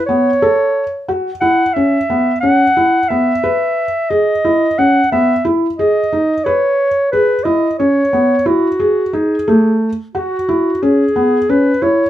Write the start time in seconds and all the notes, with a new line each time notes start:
0.06 B3 C#5
0.42 A4
1.08 F#4
1.41 E4 F#5
1.74 C#4 E5
2.10 B3
2.40 C#4 F#5
2.77 E4
3.09 B3 E5
3.44 B4
4.09 G#4 D#5
4.45 E4
4.78 C#4 F#5
5.12 B3 E5
5.45 E4
5.78 G#4 D#5
6.13 D#4
6.44 B4 C#5
7.11 G#4 B4
7.44 E4 D#5
7.79 C#4 C#5
8.13 B3
8.46 E4 F#4
8.80 G#4
9.13 D#4 G#4
9.48 A3
10.15 F#4
10.49 E4
10.83 C#4 G#4
11.16 B3
11.49 C#4 B4
11.82 E4 C#5